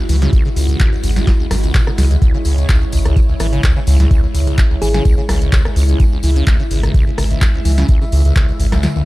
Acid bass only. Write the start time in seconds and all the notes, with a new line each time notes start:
0.09 E3
0.22 C#3
0.33 C#2
0.46 C#3
0.56 C#2
0.69 C#2
0.80 C#2
0.93 C#2
1.04 C#2
1.16 C#2
1.27 D#2
1.40 C#2
1.51 C#2
1.64 C#2
1.75 B2
1.87 C#3
1.98 C#2
2.11 D#2
2.22 C#2
2.34 C#3
2.45 C#2
2.58 C#2
2.69 C#2
2.82 C#2
2.93 C#2
3.05 C#2
3.16 D#2
3.29 C#2
3.40 E3
3.53 C#3
3.64 C#2
3.76 C#3
3.87 C#2
4.00 C#2
4.11 C#2
4.24 C#2
4.35 C#2
4.47 C#2
4.58 D#2
4.71 C#2
4.82 E3
4.94 C#3
5.05 C#2
5.18 C#3
5.29 C#2
5.42 C#2
5.53 C#2
5.65 C#2
5.76 C#2
5.89 C#2
6.00 D#2
6.13 C#2
6.23 E3
6.36 C#3
6.47 C#2
6.60 C#3
6.71 C#2
6.83 C#2
6.94 C#2
7.07 C#2
7.18 C#2
7.31 C#2
7.42 D#2
7.54 C#2
7.65 E3
7.78 C#3
7.89 C#2
8.01 C#3
8.12 C#2
8.25 C#2
8.36 C#2
8.49 C#2
8.60 C#2
8.72 C#2
8.83 D#2
8.96 C#2